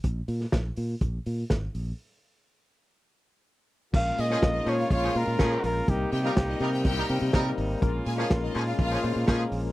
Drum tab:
CC |----------------|----------------|x---------------|----------------|
HH |x-o-x-o-x-o-x-o-|----------------|--o-x-o-x-o-x-o-|x-o-x-o-x-o-x-o-|
SD |---oo-------o---|----------------|---oo-------o---|---oo-------o---|
BD |o---o---o---o---|----------------|o---o---o---o---|o---o---o---o---|

CC |----------------|
HH |x-o-x-o-x-o-x-o-|
SD |---oo-------o---|
BD |o---o---o---o---|